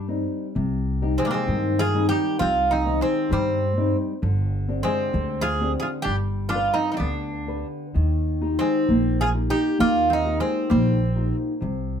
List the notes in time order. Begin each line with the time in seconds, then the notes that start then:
Already playing: G2 G3
0.08 C4 D4 D#4
0.55 C2 C3
1.02 C4 D#4 G4
1.18 G#3 C4
1.25 A#3 D4
1.31 G#3 C4
1.48 G2 D#3
1.79 F4 G#4
1.94 G3 C4 D#4
2.09 D#4 G4
2.39 C2 C4 F4
2.71 C4 D#4
2.85 D#3 C4 D#4
3.01 G#3 C4
3.30 G2 G3 C4
3.77 G3 C4 D#4
4.22 G1 D3
4.68 C4 D4 G4
4.83 G#3 C4
5.13 D2 D3
5.41 F4 G#4
5.60 C4 D4 G4
5.80 F4 G#4
6.02 G1 D4 G4
6.07 G3
6.49 D4 F4
6.54 D4 G4 B4
6.74 C4 D#4
6.92 C4 D#4
6.97 D2 B3 D4
7.02 D3
7.47 D4 G4 B4
7.94 D#2 D#3
8.41 D#4 F4 G4
8.59 G#3 C4
8.89 A#1 A#3
9.21 F4 G#4
9.34 D#4 F4 G4
9.50 D#4 G4
9.78 D#2 A#3 F4
10.10 C4 D#4
10.24 D#4 F4 G4
10.40 G#3 C4
10.70 A#1 G3 A#3 C4
11.15 D#4 F4 G4
11.61 C2 C3